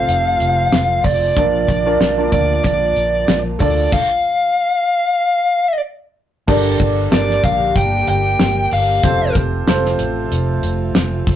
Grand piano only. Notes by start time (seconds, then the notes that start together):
Already playing: C3 C4 F4 A4 C5
1.36 A#2 F3 D4 F4 A#4 D5
1.86 D4 F4 A#4 D5
2.18 D4 F4 A#4 D5
3.60 D4 F4 A4 D5
6.47 G2 D3 D4 G4 A#4 D5
7.11 D4 G4 A#4 D5
9.03 C3 C4 F4 A4 C5
9.67 C4 F4 A4 C5